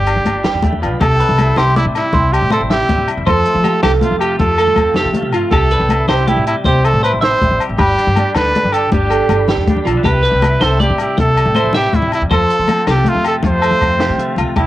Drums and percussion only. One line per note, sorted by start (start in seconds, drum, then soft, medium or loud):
0.06 closed hi-hat medium
0.06 low agogo medium
0.16 low conga medium
0.25 closed hi-hat medium
0.25 high conga medium
0.25 low agogo medium
0.35 low conga soft
0.44 snare medium
0.44 closed hi-hat medium
0.44 low conga medium
0.62 kick medium
0.62 closed hi-hat medium
0.62 high conga medium
0.73 low conga medium
0.83 closed hi-hat soft
0.83 low agogo medium
0.92 low conga soft
1.01 kick medium
1.01 closed hi-hat medium
1.01 high conga medium
1.01 low conga medium
1.01 low agogo medium
1.20 closed hi-hat soft
1.20 low conga soft
1.29 low conga medium
1.38 closed hi-hat soft
1.38 high conga medium
1.38 low agogo medium
1.47 low conga soft
1.56 snare medium
1.56 closed hi-hat medium
1.56 low conga medium
1.56 low agogo medium
1.76 closed hi-hat soft
1.76 high conga medium
1.85 low conga medium
1.95 snare soft
1.95 closed hi-hat soft
1.95 low conga soft
1.95 low agogo medium
2.13 kick medium
2.13 closed hi-hat medium
2.13 high conga medium
2.13 low conga medium
2.33 closed hi-hat soft
2.33 low agogo medium
2.41 low conga medium
2.50 closed hi-hat medium
2.50 high conga medium
2.50 low agogo medium
2.62 low conga soft
2.70 snare medium
2.70 closed hi-hat medium
2.70 low conga medium
2.89 kick medium
2.89 closed hi-hat medium
2.89 high conga medium
2.98 low conga medium
3.08 closed hi-hat soft
3.08 low agogo medium
3.17 low conga soft
3.27 kick medium
3.27 closed hi-hat medium
3.27 high conga medium
3.27 low conga medium
3.27 low agogo medium
3.45 closed hi-hat medium
3.45 low conga soft
3.55 low conga medium
3.64 closed hi-hat soft
3.64 high conga loud
3.64 low conga soft
3.64 low agogo medium
3.74 low conga soft
3.83 snare medium
3.83 closed hi-hat medium
3.83 low conga medium
3.83 low agogo medium
4.01 closed hi-hat soft
4.01 high conga medium
4.11 low conga medium
4.21 closed hi-hat soft
4.21 low agogo medium
4.39 kick medium
4.39 closed hi-hat medium
4.39 high conga medium
4.39 low conga medium
4.58 closed hi-hat soft
4.58 low agogo medium
4.67 low conga medium
4.76 kick medium
4.76 closed hi-hat soft
4.76 high conga medium
4.76 low agogo medium
4.94 snare medium
4.94 closed hi-hat medium
4.94 low conga medium
5.14 closed hi-hat soft
5.14 high conga medium
5.14 low conga soft
5.22 low conga medium
5.32 closed hi-hat soft
5.32 low conga soft
5.32 low agogo medium
5.51 kick medium
5.51 closed hi-hat medium
5.51 high conga medium
5.51 low conga medium
5.51 low agogo medium
5.70 closed hi-hat medium
5.70 low conga soft
5.80 low conga medium
5.89 closed hi-hat medium
5.89 high conga medium
5.89 low agogo medium
6.08 snare loud
6.08 closed hi-hat medium
6.08 low conga medium
6.08 low agogo medium
6.19 low conga soft
6.27 closed hi-hat medium
6.27 high conga medium
6.37 low conga medium
6.46 closed hi-hat medium
6.46 low conga soft
6.46 low agogo medium
6.65 kick medium
6.65 closed hi-hat medium
6.65 high conga loud
6.65 low conga loud
6.85 closed hi-hat medium
6.85 low agogo medium
6.93 low conga medium
7.04 closed hi-hat medium
7.04 low agogo medium
7.13 low conga soft
7.22 snare medium
7.22 closed hi-hat medium
7.22 low conga medium
7.42 kick medium
7.42 closed hi-hat soft
7.42 high conga medium
7.51 low conga medium
7.60 closed hi-hat soft
7.60 low agogo medium
7.70 low conga soft
7.78 kick medium
7.78 closed hi-hat medium
7.78 high conga medium
7.78 low conga loud
7.78 low agogo medium
7.97 closed hi-hat soft
7.97 low conga soft
8.07 low conga medium
8.16 closed hi-hat soft
8.16 high conga loud
8.16 low agogo medium
8.26 low conga soft
8.35 snare medium
8.35 closed hi-hat medium
8.35 low conga medium
8.35 low agogo medium
8.46 low conga soft
8.55 closed hi-hat soft
8.55 high conga medium
8.65 low conga medium
8.72 closed hi-hat medium
8.72 low agogo medium
8.92 kick medium
8.92 closed hi-hat medium
8.92 high conga loud
8.92 low conga loud
9.10 closed hi-hat soft
9.10 low agogo medium
9.29 closed hi-hat medium
9.29 high conga medium
9.29 low agogo medium
9.39 low conga soft
9.48 snare medium
9.48 closed hi-hat medium
9.48 low conga medium
9.67 kick medium
9.67 closed hi-hat medium
9.67 high conga loud
9.77 low conga medium
9.87 closed hi-hat soft
9.87 low agogo medium
9.96 low conga soft
10.04 kick medium
10.04 closed hi-hat medium
10.04 high conga loud
10.04 low conga medium
10.04 low agogo medium
10.25 closed hi-hat medium
10.32 low conga medium
10.42 closed hi-hat medium
10.42 high conga loud
10.42 low agogo medium
10.61 snare loud
10.61 closed hi-hat medium
10.61 low conga medium
10.61 low agogo medium
10.80 closed hi-hat soft
10.80 high conga medium
10.90 low conga medium
10.98 closed hi-hat medium
10.98 low conga soft
10.98 low agogo medium
11.18 kick medium
11.18 closed hi-hat medium
11.18 high conga medium
11.18 low conga loud
11.37 closed hi-hat soft
11.37 low agogo medium
11.46 low conga medium
11.55 closed hi-hat medium
11.55 high conga loud
11.55 low agogo medium
11.63 low conga soft
11.73 snare medium
11.73 closed hi-hat medium
11.73 low conga medium
11.93 kick medium
11.93 closed hi-hat medium
11.93 high conga medium
12.02 low conga medium
12.12 closed hi-hat soft
12.12 low agogo medium
12.22 low conga soft
12.31 kick medium
12.31 closed hi-hat medium
12.31 high conga medium
12.31 low conga medium
12.31 low agogo medium
12.50 closed hi-hat medium
12.68 closed hi-hat medium
12.68 high conga loud
12.68 low agogo medium
12.78 low conga soft
12.87 snare medium
12.87 closed hi-hat medium
12.87 low conga loud
12.87 low agogo medium
12.96 low conga soft
13.05 closed hi-hat medium
13.05 high conga medium
13.15 low conga medium
13.24 closed hi-hat medium
13.24 low agogo medium
13.43 kick medium
13.43 closed hi-hat medium
13.43 high conga loud
13.43 low conga loud
13.62 closed hi-hat medium
13.62 low agogo medium
13.71 low conga medium
13.81 kick medium
13.81 closed hi-hat medium
13.81 high conga medium
13.81 low agogo medium
13.99 snare medium
13.99 closed hi-hat medium
13.99 high conga medium
14.18 closed hi-hat soft
14.18 low conga medium
14.36 closed hi-hat soft
14.36 low conga medium
14.36 low agogo medium
14.56 kick medium
14.56 closed hi-hat medium
14.56 high conga medium
14.56 low agogo medium